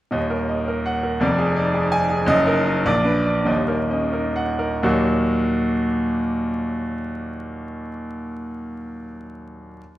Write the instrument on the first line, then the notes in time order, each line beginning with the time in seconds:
grand piano
0.11 D#1 D#2 D#5
0.30 A#4
0.49 D#5
0.68 A#4
0.86 F#5
1.03 A#4
1.20 F1 F2 D5
1.38 G#4
1.56 D#4 D5
1.74 G#4
1.92 G#5
2.09 G#4
2.26 F#1 F#2 D#5
2.47 D#4 A#4
2.66 D#5
2.86 A#1 D5
3.05 D4 B4
3.26 D5
3.45 D#1 D#2 D#5
3.68 D#4 A#4
3.91 C#4 D#5
4.13 D#4 A#4
4.36 F#5
4.59 D#4 A#4
4.83 D#2 A#2 F#3 A#3 D#4 F#4